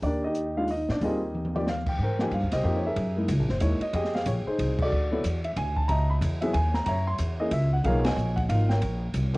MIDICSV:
0, 0, Header, 1, 5, 480
1, 0, Start_track
1, 0, Tempo, 325380
1, 46, Time_signature, 3, 2, 24, 8
1, 13833, End_track
2, 0, Start_track
2, 0, Title_t, "Grand piano"
2, 0, Program_c, 0, 0
2, 51, Note_on_c, 0, 74, 90
2, 76, Note_on_c, 0, 62, 65
2, 77, Note_on_c, 0, 67, 63
2, 80, Note_on_c, 0, 70, 60
2, 326, Note_off_c, 0, 74, 0
2, 339, Note_off_c, 0, 62, 0
2, 340, Note_off_c, 0, 67, 0
2, 341, Note_off_c, 0, 70, 0
2, 357, Note_on_c, 0, 75, 81
2, 388, Note_on_c, 0, 63, 62
2, 392, Note_on_c, 0, 67, 61
2, 815, Note_off_c, 0, 63, 0
2, 817, Note_off_c, 0, 67, 0
2, 834, Note_on_c, 0, 56, 60
2, 836, Note_on_c, 0, 51, 62
2, 840, Note_on_c, 0, 65, 68
2, 844, Note_on_c, 0, 77, 82
2, 846, Note_off_c, 0, 75, 0
2, 849, Note_on_c, 0, 62, 57
2, 994, Note_off_c, 0, 56, 0
2, 995, Note_off_c, 0, 51, 0
2, 997, Note_off_c, 0, 65, 0
2, 1002, Note_off_c, 0, 62, 0
2, 1005, Note_off_c, 0, 77, 0
2, 1041, Note_on_c, 0, 75, 85
2, 1079, Note_on_c, 0, 63, 63
2, 1303, Note_off_c, 0, 75, 0
2, 1323, Note_off_c, 0, 63, 0
2, 1347, Note_on_c, 0, 74, 80
2, 1386, Note_on_c, 0, 62, 59
2, 1498, Note_off_c, 0, 74, 0
2, 1506, Note_on_c, 0, 55, 68
2, 1515, Note_on_c, 0, 60, 62
2, 1515, Note_on_c, 0, 65, 65
2, 1519, Note_off_c, 0, 62, 0
2, 1528, Note_on_c, 0, 68, 73
2, 1531, Note_on_c, 0, 75, 79
2, 1551, Note_on_c, 0, 67, 58
2, 1555, Note_on_c, 0, 70, 56
2, 1556, Note_on_c, 0, 63, 57
2, 1765, Note_off_c, 0, 55, 0
2, 1770, Note_off_c, 0, 60, 0
2, 1770, Note_off_c, 0, 65, 0
2, 1776, Note_off_c, 0, 68, 0
2, 2269, Note_off_c, 0, 63, 0
2, 2276, Note_off_c, 0, 67, 0
2, 2282, Note_on_c, 0, 53, 67
2, 2288, Note_on_c, 0, 58, 59
2, 2291, Note_on_c, 0, 63, 54
2, 2298, Note_on_c, 0, 67, 71
2, 2299, Note_on_c, 0, 74, 76
2, 2413, Note_off_c, 0, 75, 0
2, 2425, Note_off_c, 0, 70, 0
2, 2440, Note_off_c, 0, 53, 0
2, 2443, Note_off_c, 0, 58, 0
2, 2444, Note_off_c, 0, 63, 0
2, 2448, Note_off_c, 0, 67, 0
2, 2455, Note_off_c, 0, 74, 0
2, 2499, Note_on_c, 0, 77, 81
2, 2781, Note_off_c, 0, 77, 0
2, 2786, Note_on_c, 0, 79, 77
2, 2955, Note_off_c, 0, 79, 0
2, 2992, Note_on_c, 0, 79, 87
2, 2998, Note_on_c, 0, 72, 64
2, 2999, Note_on_c, 0, 70, 67
2, 3241, Note_off_c, 0, 79, 0
2, 3243, Note_on_c, 0, 53, 69
2, 3247, Note_on_c, 0, 58, 64
2, 3253, Note_on_c, 0, 63, 64
2, 3257, Note_on_c, 0, 67, 75
2, 3281, Note_on_c, 0, 80, 80
2, 3401, Note_off_c, 0, 53, 0
2, 3403, Note_off_c, 0, 58, 0
2, 3406, Note_off_c, 0, 63, 0
2, 3408, Note_off_c, 0, 67, 0
2, 3443, Note_off_c, 0, 80, 0
2, 3451, Note_on_c, 0, 77, 83
2, 3691, Note_off_c, 0, 70, 0
2, 3691, Note_off_c, 0, 72, 0
2, 3710, Note_off_c, 0, 77, 0
2, 3730, Note_on_c, 0, 75, 98
2, 3738, Note_on_c, 0, 67, 61
2, 3738, Note_on_c, 0, 72, 61
2, 3887, Note_off_c, 0, 67, 0
2, 3890, Note_on_c, 0, 53, 70
2, 3893, Note_on_c, 0, 58, 67
2, 3906, Note_on_c, 0, 63, 61
2, 3909, Note_on_c, 0, 67, 82
2, 4082, Note_off_c, 0, 75, 0
2, 4082, Note_on_c, 0, 73, 64
2, 4159, Note_off_c, 0, 53, 0
2, 4161, Note_off_c, 0, 58, 0
2, 4167, Note_off_c, 0, 63, 0
2, 4169, Note_off_c, 0, 67, 0
2, 4200, Note_off_c, 0, 73, 0
2, 4225, Note_on_c, 0, 76, 86
2, 4233, Note_on_c, 0, 70, 62
2, 4235, Note_on_c, 0, 68, 61
2, 4342, Note_off_c, 0, 72, 0
2, 4675, Note_on_c, 0, 56, 60
2, 4679, Note_on_c, 0, 58, 57
2, 4687, Note_on_c, 0, 64, 66
2, 4689, Note_on_c, 0, 63, 55
2, 4837, Note_off_c, 0, 56, 0
2, 4839, Note_off_c, 0, 58, 0
2, 4843, Note_off_c, 0, 64, 0
2, 4845, Note_off_c, 0, 63, 0
2, 5113, Note_off_c, 0, 70, 0
2, 5114, Note_off_c, 0, 68, 0
2, 5164, Note_on_c, 0, 72, 78
2, 5197, Note_off_c, 0, 76, 0
2, 5238, Note_off_c, 0, 72, 0
2, 5314, Note_on_c, 0, 56, 60
2, 5323, Note_on_c, 0, 58, 53
2, 5324, Note_on_c, 0, 63, 53
2, 5330, Note_on_c, 0, 73, 84
2, 5331, Note_on_c, 0, 64, 64
2, 5591, Note_off_c, 0, 56, 0
2, 5596, Note_off_c, 0, 58, 0
2, 5596, Note_off_c, 0, 63, 0
2, 5600, Note_off_c, 0, 64, 0
2, 5608, Note_off_c, 0, 73, 0
2, 5637, Note_on_c, 0, 75, 86
2, 5797, Note_off_c, 0, 75, 0
2, 5819, Note_on_c, 0, 75, 94
2, 5826, Note_on_c, 0, 68, 68
2, 5834, Note_on_c, 0, 67, 68
2, 6115, Note_on_c, 0, 77, 91
2, 6123, Note_off_c, 0, 75, 0
2, 6283, Note_off_c, 0, 77, 0
2, 6287, Note_on_c, 0, 73, 83
2, 6361, Note_off_c, 0, 73, 0
2, 6543, Note_off_c, 0, 68, 0
2, 6548, Note_off_c, 0, 67, 0
2, 6593, Note_on_c, 0, 72, 87
2, 6600, Note_on_c, 0, 68, 66
2, 6607, Note_on_c, 0, 63, 63
2, 7086, Note_off_c, 0, 72, 0
2, 7114, Note_on_c, 0, 74, 100
2, 7124, Note_on_c, 0, 69, 62
2, 7131, Note_on_c, 0, 66, 59
2, 7212, Note_off_c, 0, 68, 0
2, 7216, Note_off_c, 0, 63, 0
2, 7530, Note_off_c, 0, 69, 0
2, 7541, Note_on_c, 0, 54, 64
2, 7546, Note_on_c, 0, 59, 58
2, 7552, Note_on_c, 0, 69, 69
2, 7556, Note_on_c, 0, 64, 59
2, 7710, Note_off_c, 0, 54, 0
2, 7713, Note_off_c, 0, 59, 0
2, 7716, Note_off_c, 0, 69, 0
2, 7718, Note_off_c, 0, 64, 0
2, 7993, Note_off_c, 0, 74, 0
2, 8002, Note_off_c, 0, 66, 0
2, 8032, Note_on_c, 0, 76, 83
2, 8106, Note_off_c, 0, 76, 0
2, 8222, Note_on_c, 0, 80, 92
2, 8502, Note_on_c, 0, 81, 90
2, 8523, Note_off_c, 0, 80, 0
2, 8674, Note_on_c, 0, 82, 102
2, 8694, Note_off_c, 0, 81, 0
2, 8703, Note_on_c, 0, 75, 74
2, 8703, Note_on_c, 0, 76, 70
2, 8959, Note_off_c, 0, 82, 0
2, 8997, Note_on_c, 0, 83, 90
2, 9071, Note_off_c, 0, 83, 0
2, 9420, Note_off_c, 0, 76, 0
2, 9421, Note_off_c, 0, 75, 0
2, 9461, Note_on_c, 0, 76, 90
2, 9471, Note_on_c, 0, 54, 73
2, 9477, Note_on_c, 0, 59, 65
2, 9484, Note_on_c, 0, 64, 63
2, 9488, Note_on_c, 0, 68, 81
2, 9635, Note_off_c, 0, 54, 0
2, 9637, Note_off_c, 0, 59, 0
2, 9640, Note_on_c, 0, 80, 94
2, 9641, Note_off_c, 0, 64, 0
2, 9643, Note_off_c, 0, 68, 0
2, 9653, Note_off_c, 0, 76, 0
2, 9952, Note_off_c, 0, 80, 0
2, 9952, Note_on_c, 0, 82, 91
2, 10105, Note_off_c, 0, 82, 0
2, 10127, Note_on_c, 0, 82, 107
2, 10153, Note_on_c, 0, 76, 71
2, 10165, Note_on_c, 0, 73, 73
2, 10435, Note_off_c, 0, 82, 0
2, 10438, Note_on_c, 0, 84, 102
2, 10512, Note_off_c, 0, 84, 0
2, 10865, Note_off_c, 0, 76, 0
2, 10871, Note_off_c, 0, 73, 0
2, 10916, Note_on_c, 0, 58, 67
2, 10916, Note_on_c, 0, 75, 92
2, 10925, Note_on_c, 0, 61, 59
2, 10928, Note_on_c, 0, 64, 61
2, 10933, Note_on_c, 0, 68, 71
2, 11077, Note_off_c, 0, 58, 0
2, 11081, Note_off_c, 0, 61, 0
2, 11082, Note_off_c, 0, 75, 0
2, 11083, Note_off_c, 0, 64, 0
2, 11085, Note_off_c, 0, 68, 0
2, 11108, Note_on_c, 0, 76, 100
2, 11376, Note_off_c, 0, 76, 0
2, 11402, Note_on_c, 0, 78, 88
2, 11565, Note_off_c, 0, 78, 0
2, 11575, Note_on_c, 0, 53, 68
2, 11581, Note_on_c, 0, 58, 63
2, 11581, Note_on_c, 0, 77, 104
2, 11582, Note_on_c, 0, 63, 63
2, 11585, Note_on_c, 0, 68, 74
2, 11614, Note_on_c, 0, 70, 69
2, 11614, Note_on_c, 0, 73, 76
2, 11840, Note_off_c, 0, 53, 0
2, 11843, Note_off_c, 0, 58, 0
2, 11843, Note_off_c, 0, 63, 0
2, 11845, Note_off_c, 0, 68, 0
2, 11869, Note_on_c, 0, 80, 101
2, 11881, Note_off_c, 0, 77, 0
2, 11887, Note_off_c, 0, 73, 0
2, 11896, Note_on_c, 0, 75, 71
2, 11909, Note_on_c, 0, 73, 71
2, 12315, Note_off_c, 0, 70, 0
2, 12332, Note_on_c, 0, 78, 92
2, 12362, Note_off_c, 0, 80, 0
2, 12405, Note_off_c, 0, 78, 0
2, 12498, Note_off_c, 0, 75, 0
2, 12505, Note_off_c, 0, 73, 0
2, 12526, Note_on_c, 0, 77, 94
2, 12540, Note_on_c, 0, 53, 56
2, 12550, Note_on_c, 0, 58, 52
2, 12559, Note_on_c, 0, 65, 57
2, 12561, Note_on_c, 0, 63, 49
2, 12802, Note_off_c, 0, 53, 0
2, 12806, Note_off_c, 0, 58, 0
2, 12811, Note_off_c, 0, 65, 0
2, 12812, Note_off_c, 0, 63, 0
2, 12820, Note_on_c, 0, 79, 82
2, 12833, Note_off_c, 0, 77, 0
2, 12850, Note_on_c, 0, 73, 62
2, 12853, Note_on_c, 0, 70, 62
2, 13772, Note_on_c, 0, 53, 74
2, 13778, Note_on_c, 0, 58, 67
2, 13833, Note_off_c, 0, 53, 0
2, 13833, Note_off_c, 0, 58, 0
2, 13833, Note_off_c, 0, 70, 0
2, 13833, Note_off_c, 0, 73, 0
2, 13833, Note_off_c, 0, 79, 0
2, 13833, End_track
3, 0, Start_track
3, 0, Title_t, "Upright bass"
3, 0, Program_c, 1, 32
3, 37, Note_on_c, 1, 39, 84
3, 1243, Note_off_c, 1, 39, 0
3, 1314, Note_on_c, 1, 46, 68
3, 1481, Note_off_c, 1, 46, 0
3, 1493, Note_on_c, 1, 39, 89
3, 2875, Note_off_c, 1, 39, 0
3, 2931, Note_on_c, 1, 44, 88
3, 3398, Note_off_c, 1, 44, 0
3, 3407, Note_on_c, 1, 43, 90
3, 3578, Note_on_c, 1, 39, 54
3, 3600, Note_off_c, 1, 43, 0
3, 3722, Note_off_c, 1, 39, 0
3, 3731, Note_on_c, 1, 36, 64
3, 3881, Note_off_c, 1, 36, 0
3, 3889, Note_on_c, 1, 41, 85
3, 4357, Note_off_c, 1, 41, 0
3, 4369, Note_on_c, 1, 42, 86
3, 4833, Note_off_c, 1, 42, 0
3, 4842, Note_on_c, 1, 37, 93
3, 5004, Note_off_c, 1, 37, 0
3, 5004, Note_on_c, 1, 34, 57
3, 5152, Note_off_c, 1, 34, 0
3, 5161, Note_on_c, 1, 30, 70
3, 5316, Note_off_c, 1, 30, 0
3, 5326, Note_on_c, 1, 39, 85
3, 5597, Note_off_c, 1, 39, 0
3, 5799, Note_on_c, 1, 41, 86
3, 6272, Note_off_c, 1, 41, 0
3, 6284, Note_on_c, 1, 34, 91
3, 6565, Note_off_c, 1, 34, 0
3, 6765, Note_on_c, 1, 36, 86
3, 7235, Note_off_c, 1, 36, 0
3, 7257, Note_on_c, 1, 38, 87
3, 7721, Note_off_c, 1, 38, 0
3, 7732, Note_on_c, 1, 40, 87
3, 8198, Note_off_c, 1, 40, 0
3, 8207, Note_on_c, 1, 38, 88
3, 8675, Note_off_c, 1, 38, 0
3, 8690, Note_on_c, 1, 37, 82
3, 9157, Note_off_c, 1, 37, 0
3, 9164, Note_on_c, 1, 40, 93
3, 9633, Note_off_c, 1, 40, 0
3, 9649, Note_on_c, 1, 39, 88
3, 10116, Note_off_c, 1, 39, 0
3, 10129, Note_on_c, 1, 42, 88
3, 10595, Note_off_c, 1, 42, 0
3, 10606, Note_on_c, 1, 40, 95
3, 11074, Note_off_c, 1, 40, 0
3, 11084, Note_on_c, 1, 37, 91
3, 11552, Note_off_c, 1, 37, 0
3, 11566, Note_on_c, 1, 35, 88
3, 12029, Note_off_c, 1, 35, 0
3, 12037, Note_on_c, 1, 34, 89
3, 12508, Note_off_c, 1, 34, 0
3, 12529, Note_on_c, 1, 32, 90
3, 12994, Note_off_c, 1, 32, 0
3, 13003, Note_on_c, 1, 34, 86
3, 13470, Note_off_c, 1, 34, 0
3, 13483, Note_on_c, 1, 36, 86
3, 13833, Note_off_c, 1, 36, 0
3, 13833, End_track
4, 0, Start_track
4, 0, Title_t, "Muted upright bass strokes"
4, 5605, Note_on_c, 9, 29, 41
4, 5753, Note_off_c, 9, 29, 0
4, 6580, Note_on_c, 9, 29, 40
4, 6728, Note_off_c, 9, 29, 0
4, 13833, End_track
5, 0, Start_track
5, 0, Title_t, "Drums"
5, 37, Note_on_c, 9, 46, 43
5, 41, Note_on_c, 9, 36, 34
5, 185, Note_off_c, 9, 46, 0
5, 188, Note_off_c, 9, 36, 0
5, 514, Note_on_c, 9, 42, 54
5, 662, Note_off_c, 9, 42, 0
5, 999, Note_on_c, 9, 46, 43
5, 1146, Note_off_c, 9, 46, 0
5, 1309, Note_on_c, 9, 38, 45
5, 1456, Note_off_c, 9, 38, 0
5, 1490, Note_on_c, 9, 36, 33
5, 1493, Note_on_c, 9, 46, 45
5, 1637, Note_off_c, 9, 36, 0
5, 1641, Note_off_c, 9, 46, 0
5, 1985, Note_on_c, 9, 48, 46
5, 2133, Note_off_c, 9, 48, 0
5, 2137, Note_on_c, 9, 48, 51
5, 2285, Note_off_c, 9, 48, 0
5, 2299, Note_on_c, 9, 48, 75
5, 2447, Note_off_c, 9, 48, 0
5, 2460, Note_on_c, 9, 38, 57
5, 2607, Note_off_c, 9, 38, 0
5, 2751, Note_on_c, 9, 49, 71
5, 2752, Note_on_c, 9, 36, 73
5, 2899, Note_off_c, 9, 36, 0
5, 2899, Note_off_c, 9, 49, 0
5, 2934, Note_on_c, 9, 36, 21
5, 3081, Note_off_c, 9, 36, 0
5, 3233, Note_on_c, 9, 38, 53
5, 3381, Note_off_c, 9, 38, 0
5, 3413, Note_on_c, 9, 36, 24
5, 3413, Note_on_c, 9, 44, 56
5, 3413, Note_on_c, 9, 51, 63
5, 3561, Note_off_c, 9, 36, 0
5, 3561, Note_off_c, 9, 44, 0
5, 3561, Note_off_c, 9, 51, 0
5, 3711, Note_on_c, 9, 51, 63
5, 3714, Note_on_c, 9, 38, 33
5, 3859, Note_off_c, 9, 51, 0
5, 3862, Note_off_c, 9, 38, 0
5, 3888, Note_on_c, 9, 36, 26
5, 4036, Note_off_c, 9, 36, 0
5, 4369, Note_on_c, 9, 36, 23
5, 4370, Note_on_c, 9, 51, 59
5, 4516, Note_off_c, 9, 36, 0
5, 4517, Note_off_c, 9, 51, 0
5, 4843, Note_on_c, 9, 44, 60
5, 4843, Note_on_c, 9, 51, 74
5, 4847, Note_on_c, 9, 36, 23
5, 4991, Note_off_c, 9, 44, 0
5, 4991, Note_off_c, 9, 51, 0
5, 4995, Note_off_c, 9, 36, 0
5, 5147, Note_on_c, 9, 38, 32
5, 5294, Note_off_c, 9, 38, 0
5, 5315, Note_on_c, 9, 44, 58
5, 5315, Note_on_c, 9, 51, 69
5, 5322, Note_on_c, 9, 36, 26
5, 5462, Note_off_c, 9, 44, 0
5, 5462, Note_off_c, 9, 51, 0
5, 5469, Note_off_c, 9, 36, 0
5, 5619, Note_on_c, 9, 51, 48
5, 5767, Note_off_c, 9, 51, 0
5, 5802, Note_on_c, 9, 51, 61
5, 5803, Note_on_c, 9, 36, 19
5, 5949, Note_off_c, 9, 51, 0
5, 5951, Note_off_c, 9, 36, 0
5, 5966, Note_on_c, 9, 38, 31
5, 6113, Note_off_c, 9, 38, 0
5, 6125, Note_on_c, 9, 38, 47
5, 6273, Note_off_c, 9, 38, 0
5, 6276, Note_on_c, 9, 44, 54
5, 6276, Note_on_c, 9, 51, 70
5, 6281, Note_on_c, 9, 36, 24
5, 6423, Note_off_c, 9, 44, 0
5, 6423, Note_off_c, 9, 51, 0
5, 6429, Note_off_c, 9, 36, 0
5, 6765, Note_on_c, 9, 36, 21
5, 6770, Note_on_c, 9, 51, 64
5, 6912, Note_off_c, 9, 36, 0
5, 6918, Note_off_c, 9, 51, 0
5, 7062, Note_on_c, 9, 36, 84
5, 7064, Note_on_c, 9, 49, 77
5, 7209, Note_off_c, 9, 36, 0
5, 7211, Note_off_c, 9, 49, 0
5, 7726, Note_on_c, 9, 36, 27
5, 7729, Note_on_c, 9, 44, 64
5, 7729, Note_on_c, 9, 51, 71
5, 7874, Note_off_c, 9, 36, 0
5, 7877, Note_off_c, 9, 44, 0
5, 7877, Note_off_c, 9, 51, 0
5, 8027, Note_on_c, 9, 51, 44
5, 8175, Note_off_c, 9, 51, 0
5, 8207, Note_on_c, 9, 36, 19
5, 8207, Note_on_c, 9, 51, 65
5, 8354, Note_off_c, 9, 36, 0
5, 8355, Note_off_c, 9, 51, 0
5, 8503, Note_on_c, 9, 36, 57
5, 8650, Note_off_c, 9, 36, 0
5, 8682, Note_on_c, 9, 51, 59
5, 8685, Note_on_c, 9, 36, 20
5, 8829, Note_off_c, 9, 51, 0
5, 8833, Note_off_c, 9, 36, 0
5, 9168, Note_on_c, 9, 36, 18
5, 9174, Note_on_c, 9, 44, 55
5, 9174, Note_on_c, 9, 51, 74
5, 9315, Note_off_c, 9, 36, 0
5, 9321, Note_off_c, 9, 44, 0
5, 9321, Note_off_c, 9, 51, 0
5, 9467, Note_on_c, 9, 51, 46
5, 9614, Note_off_c, 9, 51, 0
5, 9647, Note_on_c, 9, 36, 27
5, 9650, Note_on_c, 9, 51, 67
5, 9795, Note_off_c, 9, 36, 0
5, 9797, Note_off_c, 9, 51, 0
5, 9944, Note_on_c, 9, 38, 51
5, 10092, Note_off_c, 9, 38, 0
5, 10120, Note_on_c, 9, 51, 65
5, 10126, Note_on_c, 9, 36, 21
5, 10267, Note_off_c, 9, 51, 0
5, 10273, Note_off_c, 9, 36, 0
5, 10598, Note_on_c, 9, 44, 64
5, 10598, Note_on_c, 9, 51, 70
5, 10605, Note_on_c, 9, 36, 19
5, 10746, Note_off_c, 9, 44, 0
5, 10746, Note_off_c, 9, 51, 0
5, 10752, Note_off_c, 9, 36, 0
5, 11080, Note_on_c, 9, 51, 68
5, 11085, Note_on_c, 9, 36, 26
5, 11228, Note_off_c, 9, 51, 0
5, 11232, Note_off_c, 9, 36, 0
5, 11568, Note_on_c, 9, 36, 19
5, 11569, Note_on_c, 9, 51, 57
5, 11716, Note_off_c, 9, 36, 0
5, 11716, Note_off_c, 9, 51, 0
5, 11868, Note_on_c, 9, 51, 73
5, 11871, Note_on_c, 9, 38, 89
5, 12016, Note_off_c, 9, 51, 0
5, 12019, Note_off_c, 9, 38, 0
5, 12055, Note_on_c, 9, 44, 55
5, 12202, Note_off_c, 9, 44, 0
5, 12347, Note_on_c, 9, 36, 57
5, 12352, Note_on_c, 9, 51, 45
5, 12495, Note_off_c, 9, 36, 0
5, 12500, Note_off_c, 9, 51, 0
5, 12528, Note_on_c, 9, 36, 23
5, 12533, Note_on_c, 9, 51, 65
5, 12676, Note_off_c, 9, 36, 0
5, 12680, Note_off_c, 9, 51, 0
5, 12829, Note_on_c, 9, 38, 52
5, 12977, Note_off_c, 9, 38, 0
5, 13006, Note_on_c, 9, 36, 20
5, 13007, Note_on_c, 9, 51, 60
5, 13153, Note_off_c, 9, 36, 0
5, 13155, Note_off_c, 9, 51, 0
5, 13478, Note_on_c, 9, 44, 64
5, 13478, Note_on_c, 9, 51, 73
5, 13482, Note_on_c, 9, 36, 20
5, 13625, Note_off_c, 9, 44, 0
5, 13625, Note_off_c, 9, 51, 0
5, 13629, Note_off_c, 9, 36, 0
5, 13781, Note_on_c, 9, 51, 46
5, 13833, Note_off_c, 9, 51, 0
5, 13833, End_track
0, 0, End_of_file